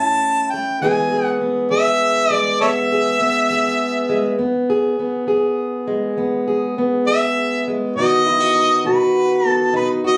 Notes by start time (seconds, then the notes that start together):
Already playing: A2 A3 C#4 E4 A5
0.51 A3 G5
0.81 E2 E3 G#3 B3 G#4 G#5
1.12 G#4
1.25 F#5
1.41 B3
1.70 E2 G#4 E5
2.30 G#3 D5
2.61 E2 B3 A4 C#5 E5
2.92 G#4
3.21 B3
3.50 E2 G#4
4.09 G#3
4.38 E2 B3
4.70 G#4
4.99 B3
5.27 E2 G#4
5.87 G#3
6.17 E2 B3
6.48 G#4
6.78 B3
7.07 E2 G#4 E5
7.68 G#3
7.96 B2 D#3 B3 D#4 F#4 D#5
8.27 E4
8.40 F#4
8.55 D#4
8.85 B2 F#4 B4
9.45 B3 A4
9.73 B2 D#4 B4
10.04 F#4 D#5